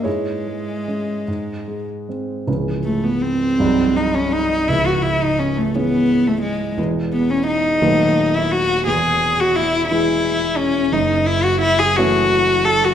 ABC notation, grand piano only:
X:1
M:6/8
L:1/8
Q:3/8=57
K:C#m
V:1 name="Grand piano"
[EGc]3 z3 | z6 | z6 | z6 |
z6 | z6 |]
V:2 name="Grand piano" clef=bass
G,, G, [G,C] G,, G, [G,^B,] | [C,,,C,,E,G,C]3 [^B,,,,^B,,,F,G,D]3 | [C,,,C,,]3 [E,G,C]3 | [E,,,E,,E,G,B,]3 [D,,,D,,F,A,B,]3 |
[E,,,E,,]3 [E,G,E]3 | [F,,,F,,]3 [E,A,C]3 |]